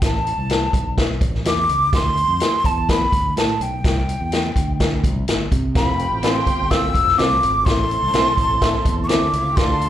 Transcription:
0.02 0.32 A1 loud
0.02 0.95 A5 medium
0.02 kick loud
0.02 snare loud
0.02 closed hi-hat loud
0.27 closed hi-hat medium
0.38 0.68 C2 medium
0.50 snare loud
0.50 closed hi-hat medium
0.73 1.14 B1 medium
0.73 kick medium
0.73 closed hi-hat medium
0.98 kick medium
0.98 snare loud
0.98 closed hi-hat medium
1.21 1.42 A1 loud
1.21 kick medium
1.21 closed hi-hat medium
1.35 snare soft
1.45 1.65 E2 medium
1.45 1.91 D6 loud
1.45 snare loud
1.45 closed hi-hat loud
1.69 1.89 C#2 medium
1.69 closed hi-hat medium
1.93 2.23 D2 medium
1.93 2.67 C6 loud
1.93 kick loud
1.93 snare loud
1.93 closed hi-hat loud
2.17 closed hi-hat medium
2.28 2.39 F2 medium
2.40 snare loud
2.40 closed hi-hat medium
2.52 muted fingered electric bass stroke soft
2.64 3.05 E2 medium
2.64 2.92 A5 medium
2.64 kick medium
2.64 closed hi-hat medium
2.89 3.37 B5 loud
2.89 kick medium
2.89 snare loud
2.89 closed hi-hat medium
3.12 3.33 D2 loud
3.12 kick medium
3.12 closed hi-hat medium
3.36 3.57 A2 medium
3.36 3.64 A5 medium
3.36 snare loud
3.36 closed hi-hat medium
3.60 3.80 B1 medium
3.60 5.05 G5 medium
3.60 closed hi-hat medium
3.84 4.15 C2 loud
3.84 kick loud
3.84 snare loud
3.84 closed hi-hat loud
4.09 closed hi-hat medium
4.21 4.51 E2 medium
4.32 snare loud
4.32 closed hi-hat medium
4.56 5.05 D2 loud
4.56 kick medium
4.56 closed hi-hat medium
4.80 kick medium
4.80 snare loud
4.80 closed hi-hat medium
5.03 5.24 C2 medium
5.03 kick medium
5.03 closed hi-hat medium
5.28 5.48 G1 medium
5.28 snare loud
5.28 closed hi-hat loud
5.52 5.77 C3 medium
5.52 kick medium
5.52 closed hi-hat medium
5.74 6.06 F1 loud
5.74 7.65 A3 medium
5.74 6.02 C4 medium
5.74 9.54 C4 medium
5.74 7.65 F4 medium
5.74 7.39 G4 medium
5.74 6.02 A4 medium
5.74 6.02 F5 medium
5.74 7.39 G5 loud
5.74 6.20 B5 loud
5.74 kick loud
5.74 snare loud
5.74 closed hi-hat medium
5.99 closed hi-hat medium
6.12 6.42 A1 medium
6.23 6.50 C4 medium
6.23 6.33 C4 medium
6.23 6.34 F4 medium
6.23 6.50 A4 medium
6.23 6.34 A4 medium
6.23 6.34 C5 medium
6.23 6.50 F5 medium
6.23 6.72 C6 loud
6.23 snare loud
6.23 closed hi-hat loud
6.47 6.87 G1 medium
6.47 kick medium
6.47 closed hi-hat medium
6.71 6.98 C4 medium
6.71 6.98 A4 medium
6.71 6.98 F5 medium
6.71 7.20 E6 loud
6.71 kick medium
6.71 snare loud
6.71 closed hi-hat medium
6.94 7.15 F1 medium
6.94 kick medium
6.94 closed hi-hat medium
7.08 snare soft
7.18 7.39 C2 medium
7.18 7.45 C4 medium
7.18 7.29 C4 medium
7.18 7.29 F4 medium
7.18 7.45 A4 medium
7.18 7.30 A4 medium
7.18 7.30 C5 medium
7.18 7.45 F5 medium
7.18 7.67 D6 loud
7.18 snare loud
7.18 closed hi-hat medium
7.43 7.63 G#1 medium
7.43 closed hi-hat medium
7.65 7.97 A1 loud
7.65 9.89 A3 medium
7.65 7.93 C4 medium
7.65 9.56 E4 medium
7.65 9.01 A4 medium
7.65 7.93 A4 medium
7.65 7.93 E5 medium
7.65 9.01 A5 medium
7.65 9.02 C6 loud
7.65 kick loud
7.65 snare loud
7.65 closed hi-hat loud
7.91 closed hi-hat medium
8.02 8.12 C2 medium
8.14 8.34 B1 medium
8.14 8.24 C4 medium
8.14 8.41 C4 medium
8.14 8.25 E4 medium
8.14 8.41 A4 medium
8.14 8.25 A4 medium
8.14 8.25 C5 medium
8.14 8.41 E5 medium
8.14 snare loud
8.14 closed hi-hat medium
8.37 8.78 A1 medium
8.37 kick medium
8.37 closed hi-hat medium
8.61 8.88 C4 medium
8.61 8.88 A4 medium
8.61 8.89 E5 loud
8.61 kick medium
8.61 snare loud
8.61 closed hi-hat medium
8.85 9.09 E2 medium
8.85 kick medium
8.85 closed hi-hat medium
9.04 9.09 C#6 medium
9.04 9.58 D6 loud
9.09 9.30 D2 medium
9.09 9.18 B3 medium
9.09 9.20 C4 medium
9.09 9.36 C4 medium
9.09 9.20 E4 medium
9.09 9.36 A4 medium
9.09 9.20 A4 medium
9.09 9.18 B4 medium
9.09 9.21 C5 loud
9.09 9.36 E5 medium
9.09 snare loud
9.09 closed hi-hat loud
9.18 9.26 C4 medium
9.18 9.26 C5 medium
9.25 9.34 D4 medium
9.25 9.33 D5 medium
9.33 9.54 C#2 medium
9.33 9.42 E4 medium
9.33 9.42 E5 medium
9.33 closed hi-hat medium
9.42 9.50 F4 medium
9.42 9.50 F5 medium
9.51 9.58 G4 medium
9.51 9.58 G5 medium
9.56 9.88 D2 loud
9.56 9.84 D4 medium
9.56 9.89 D4 medium
9.56 9.89 F4 medium
9.56 9.84 A4 medium
9.56 9.89 A4 loud
9.56 9.84 F5 medium
9.56 9.89 A5 loud
9.56 9.89 C6 loud
9.56 kick loud
9.56 snare loud
9.56 closed hi-hat loud
9.81 closed hi-hat medium

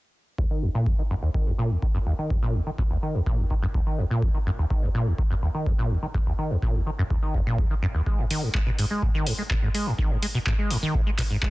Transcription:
0.38 0.45 D#2 medium
0.38 kick loud
0.51 0.64 D#3 medium
0.62 0.69 D#2 loud
0.75 0.88 A#2 medium
0.86 0.93 D#2 medium
0.86 kick loud
0.99 1.02 D#3 medium
1.10 1.14 F#2 loud
1.23 1.29 D#2 medium
1.34 1.48 D#3 medium
1.34 kick loud
1.47 1.53 D#2 medium
1.58 1.72 A#2 medium
1.70 1.77 D#2 medium
1.82 1.86 D#3 medium
1.82 kick loud
1.95 1.98 F#2 medium
2.06 2.13 D#2 medium
2.19 2.32 D#3 medium
2.30 2.37 D#2 loud
2.30 kick loud
2.43 2.56 A#2 loud
2.54 2.61 D#2 medium
2.67 2.70 D#3 medium
2.78 2.82 F#2 medium
2.78 kick loud
2.91 2.97 D#2 medium
3.02 3.16 D#3 medium
3.15 3.21 D#2 loud
3.26 3.40 A#2 loud
3.26 kick loud
3.38 3.45 D#2 medium
3.50 3.54 D#3 medium
3.50 kick medium
3.62 3.66 F#2 loud
3.74 3.81 D#2 medium
3.74 kick loud
3.86 4.00 D#3 medium
3.98 4.05 D#2 loud
4.10 4.24 A#2 loud
4.22 4.29 D#2 medium
4.22 kick loud
4.34 4.38 D#3 medium
4.46 4.50 F#2 loud
4.58 4.65 D#2 medium
4.70 4.84 D#3 medium
4.70 kick loud
4.83 4.89 D#2 loud
4.94 5.08 A#2 loud
5.06 5.13 D#2 medium
5.18 5.22 D#3 medium
5.18 kick loud
5.31 5.34 F#2 loud
5.42 5.49 D#2 medium
5.55 5.68 D#3 medium
5.66 5.73 D#2 medium
5.66 kick loud
5.78 5.92 A#2 loud
5.90 5.97 D#2 medium
6.03 6.06 D#3 medium
6.14 6.18 F#2 loud
6.14 kick loud
6.27 6.33 D#2 medium
6.38 6.52 D#3 medium
6.50 6.57 D#2 loud
6.62 6.76 A#2 medium
6.62 kick loud
6.75 6.81 D#2 medium
6.86 6.90 D#3 medium
6.98 7.02 F#2 loud
7.10 7.17 D#2 medium
7.10 kick loud
7.22 7.36 D#3 medium
7.34 7.41 D#2 medium
7.34 kick medium
7.46 7.60 A#2 medium
7.58 7.65 D#2 medium
7.58 kick loud
7.70 7.74 D#3 medium
7.82 7.86 F#2 loud
7.95 8.01 D#2 medium
8.06 8.20 G#3 medium
8.06 kick loud
8.19 8.25 G#2 loud
8.30 8.44 D#3 loud
8.30 open hi-hat medium
8.43 8.49 G#2 medium
8.54 8.58 G#3 medium
8.54 kick loud
8.54 clap loud
8.67 8.71 B2 medium
8.78 8.85 G#2 medium
8.78 open hi-hat medium
8.91 9.04 G#3 medium
9.02 9.09 G#2 loud
9.02 kick loud
9.14 9.28 D#3 loud
9.26 9.33 G#2 medium
9.26 open hi-hat loud
9.38 9.42 G#3 medium
9.50 9.54 B2 medium
9.50 kick loud
9.50 clap loud
9.62 9.69 G#2 medium
9.74 9.88 G#3 medium
9.74 open hi-hat medium
9.86 9.93 G#2 loud
9.98 10.12 D#3 loud
9.98 kick loud
10.11 10.17 G#2 medium
10.22 10.26 G#3 medium
10.22 open hi-hat medium
10.35 10.38 B2 loud
10.46 10.53 G#2 medium
10.46 kick loud
10.46 clap loud
10.59 10.72 G#3 medium
10.70 10.77 G#2 loud
10.70 open hi-hat medium
10.82 10.96 D#3 loud
10.94 11.01 G#2 medium
10.94 kick loud
11.07 11.10 G#3 medium
11.18 11.22 B2 loud
11.18 kick medium
11.18 clap medium
11.18 open hi-hat loud
11.30 11.37 G#2 medium
11.42 11.50 G#3 medium
11.42 kick loud
11.42 clap loud

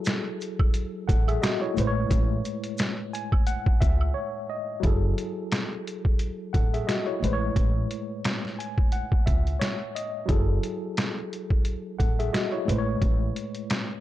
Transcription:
0.00 1.71 F#3 medium
0.00 1.04 E4 medium
0.00 1.06 G#4 medium
0.00 1.07 A4 medium
0.05 snare loud
0.05 closed hi-hat loud
0.05 maracas medium
0.41 closed hi-hat medium
0.41 maracas soft
0.59 kick loud
0.59 high woodblock medium
0.74 closed hi-hat medium
0.74 maracas medium
1.08 1.36 A1 medium
1.08 1.27 A4 medium
1.08 1.26 F#5 medium
1.08 kick loud
1.08 closed hi-hat medium
1.08 maracas medium
1.28 1.42 G#4 medium
1.28 1.42 E5 medium
1.28 closed hi-hat soft
1.28 high woodblock medium
1.42 1.61 F#4 medium
1.42 1.61 D#5 medium
1.42 snare loud
1.42 closed hi-hat loud
1.42 maracas medium
1.61 1.94 E4 medium
1.61 1.86 C#5 medium
1.74 2.04 A1 loud
1.74 4.44 A2 medium
1.74 4.45 G#3 medium
1.74 maracas soft
1.78 4.46 B4 medium
1.78 1.86 C5 medium
1.78 closed hi-hat medium
1.87 4.13 C#5 medium
2.11 2.38 A1 loud
2.11 kick loud
2.11 closed hi-hat medium
2.11 maracas medium
2.45 closed hi-hat medium
2.45 maracas medium
2.64 closed hi-hat medium
2.78 snare loud
2.78 closed hi-hat medium
2.78 maracas medium
3.13 3.45 G#5 medium
3.13 closed hi-hat medium
3.13 maracas soft
3.32 kick medium
3.32 high woodblock medium
3.47 3.79 F#5 medium
3.47 closed hi-hat medium
3.47 maracas medium
3.66 kick loud
3.81 4.09 C#2 medium
3.81 4.13 E5 medium
3.81 kick loud
3.81 closed hi-hat medium
3.81 maracas medium
4.01 high woodblock medium
4.14 4.46 C#5 medium
4.50 4.81 D#5 medium
4.80 5.11 F#1 loud
4.80 7.16 F#3 medium
4.80 6.50 E4 medium
4.80 kick loud
4.80 closed hi-hat medium
4.84 6.51 G#4 medium
4.84 6.52 A4 medium
5.18 closed hi-hat medium
5.52 snare loud
5.52 closed hi-hat medium
5.87 closed hi-hat medium
6.05 kick medium
6.19 closed hi-hat medium
6.53 6.82 A1 medium
6.53 6.72 A4 medium
6.53 6.72 F#5 medium
6.53 kick loud
6.53 closed hi-hat medium
6.74 6.88 G#4 medium
6.74 6.87 E5 medium
6.74 closed hi-hat soft
6.87 7.06 F#4 medium
6.87 7.06 D#5 medium
6.87 snare loud
6.87 closed hi-hat loud
7.06 7.40 E4 medium
7.06 7.32 C#5 medium
7.20 7.50 A1 loud
7.20 9.90 A2 medium
7.20 9.91 G#3 medium
7.24 9.92 B4 medium
7.24 7.32 C5 medium
7.24 closed hi-hat medium
7.33 9.58 C#5 medium
7.56 7.84 A1 loud
7.56 kick loud
7.56 closed hi-hat medium
7.91 closed hi-hat medium
8.24 snare loud
8.24 closed hi-hat medium
8.45 snare soft
8.59 8.90 G#5 medium
8.59 closed hi-hat medium
8.78 kick loud
8.92 9.24 F#5 medium
8.92 closed hi-hat medium
9.12 kick loud
9.26 9.54 C#2 medium
9.26 9.58 E5 medium
9.26 kick loud
9.26 closed hi-hat medium
9.47 closed hi-hat soft
9.59 9.92 C#5 medium
9.59 snare loud
9.59 closed hi-hat loud
9.95 10.27 D#5 medium
9.95 closed hi-hat medium
10.26 10.56 F#1 loud
10.26 12.62 F#3 medium
10.26 11.95 E4 medium
10.26 kick loud
10.26 closed hi-hat medium
10.30 11.96 G#4 medium
10.30 11.98 A4 medium
10.63 closed hi-hat medium
10.97 snare loud
10.97 closed hi-hat medium
11.33 closed hi-hat medium
11.50 kick medium
11.65 closed hi-hat medium
11.99 12.27 A1 medium
11.99 12.18 A4 medium
11.99 12.17 F#5 medium
11.99 kick medium
11.99 closed hi-hat medium
12.19 12.33 G#4 medium
12.19 12.33 E5 medium
12.19 closed hi-hat soft
12.33 12.52 F#4 medium
12.33 12.52 D#5 medium
12.33 snare loud
12.33 closed hi-hat loud
12.52 12.85 E4 medium
12.52 12.77 C#5 medium
12.65 12.95 A1 loud
12.65 14.00 A2 medium
12.65 14.00 G#3 medium
12.69 14.00 B4 medium
12.69 12.77 C5 medium
12.69 closed hi-hat medium
12.78 14.00 C#5 medium
13.02 13.29 A1 loud
13.02 kick loud
13.02 closed hi-hat medium
13.36 closed hi-hat medium
13.55 closed hi-hat medium
13.70 snare loud
13.70 closed hi-hat medium

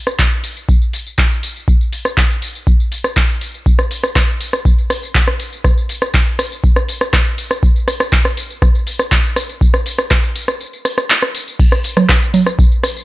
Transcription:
0.07 cross-stick medium
0.07 tambourine soft
0.19 kick loud
0.19 clap loud
0.19 tambourine soft
0.32 tambourine soft
0.44 open hi-hat loud
0.44 tambourine medium
0.57 tambourine soft
0.69 kick loud
0.69 tambourine soft
0.82 tambourine soft
0.93 open hi-hat loud
0.93 tambourine medium
1.06 tambourine soft
1.18 kick loud
1.18 clap loud
1.18 tambourine soft
1.31 tambourine soft
1.43 open hi-hat loud
1.43 tambourine medium
1.56 tambourine soft
1.68 kick loud
1.68 tambourine soft
1.81 tambourine soft
1.93 open hi-hat loud
1.93 tambourine medium
2.05 cross-stick medium
2.05 tambourine soft
2.17 kick loud
2.17 clap loud
2.17 tambourine soft
2.30 tambourine soft
2.42 open hi-hat loud
2.42 tambourine medium
2.55 tambourine soft
2.67 kick loud
2.67 tambourine soft
2.80 tambourine soft
2.92 open hi-hat loud
2.92 tambourine medium
3.04 cross-stick medium
3.04 tambourine soft
3.17 kick loud
3.17 clap loud
3.17 tambourine soft
3.29 tambourine soft
3.41 open hi-hat loud
3.41 tambourine medium
3.54 tambourine soft
3.66 kick loud
3.66 tambourine soft
3.79 cross-stick medium
3.79 tambourine soft
3.91 open hi-hat loud
3.91 tambourine medium
4.04 cross-stick medium
4.04 tambourine soft
4.16 kick loud
4.16 cross-stick medium
4.16 clap loud
4.16 tambourine soft
4.29 tambourine soft
4.41 open hi-hat loud
4.41 tambourine medium
4.53 cross-stick medium
4.53 tambourine soft
4.65 kick loud
4.65 tambourine soft
4.78 tambourine soft
4.90 cross-stick medium
4.90 open hi-hat loud
4.90 tambourine medium
5.03 tambourine soft
5.15 kick loud
5.15 clap loud
5.15 tambourine soft
5.28 cross-stick medium
5.28 tambourine soft
5.40 open hi-hat loud
5.40 tambourine medium
5.53 tambourine soft
5.64 kick loud
5.64 cross-stick medium
5.64 tambourine soft
5.78 tambourine soft
5.89 open hi-hat loud
5.89 tambourine medium
6.02 cross-stick medium
6.02 tambourine soft
6.14 kick medium
6.14 clap loud
6.14 tambourine soft
6.27 tambourine soft
6.39 cross-stick medium
6.39 open hi-hat loud
6.39 tambourine medium
6.52 tambourine soft
6.64 kick loud
6.64 tambourine soft
6.76 cross-stick medium
6.76 tambourine soft
6.89 open hi-hat loud
6.89 tambourine medium
7.01 cross-stick medium
7.01 tambourine soft
7.13 kick loud
7.13 cross-stick medium
7.13 clap loud
7.13 tambourine soft
7.26 tambourine soft
7.38 open hi-hat medium
7.38 tambourine medium
7.51 cross-stick medium
7.51 tambourine soft
7.63 kick loud
7.63 tambourine soft
7.76 tambourine soft
7.88 cross-stick medium
7.88 open hi-hat loud
7.88 tambourine medium
8.00 cross-stick medium
8.00 tambourine soft
8.12 kick medium
8.12 clap loud
8.12 tambourine soft
8.25 cross-stick medium
8.25 tambourine soft
8.37 open hi-hat loud
8.37 tambourine medium
8.50 tambourine soft
8.62 kick loud
8.62 cross-stick medium
8.62 tambourine soft
8.75 tambourine soft
8.87 open hi-hat medium
8.87 tambourine medium
8.99 cross-stick medium
8.99 tambourine soft
9.12 kick loud
9.12 clap loud
9.12 tambourine soft
9.25 tambourine soft
9.36 cross-stick medium
9.36 open hi-hat loud
9.36 tambourine medium
9.49 tambourine soft
9.61 kick loud
9.61 tambourine soft
9.74 cross-stick medium
9.74 tambourine soft
9.86 open hi-hat loud
9.86 tambourine medium
9.98 cross-stick medium
9.98 tambourine soft
10.11 kick loud
10.11 cross-stick medium
10.11 clap loud
10.11 tambourine soft
10.24 tambourine soft
10.36 open hi-hat loud
10.36 tambourine medium
10.48 cross-stick medium
10.48 tambourine soft
10.61 tambourine soft
10.73 tambourine soft
10.85 cross-stick medium
10.85 open hi-hat loud
10.85 tambourine medium
10.98 cross-stick medium
10.98 tambourine soft
11.10 clap loud
11.10 tambourine soft
11.22 cross-stick medium
11.22 tambourine soft
11.35 open hi-hat loud
11.35 tambourine medium
11.48 tambourine soft
11.59 kick loud
11.59 crash loud
11.59 tambourine soft
11.72 cross-stick medium
11.72 tambourine soft
11.84 open hi-hat loud
11.84 tambourine medium
11.97 cross-stick medium
11.97 tambourine soft
11.97 low conga medium
12.09 kick loud
12.09 cross-stick medium
12.09 clap loud
12.09 tambourine soft
12.22 tambourine soft
12.34 open hi-hat loud
12.34 tambourine medium
12.34 low conga medium
12.46 cross-stick medium
12.46 tambourine soft
12.59 kick loud
12.59 tambourine soft
12.72 tambourine soft
12.84 cross-stick medium
12.84 open hi-hat loud
12.84 tambourine medium
12.97 tambourine soft

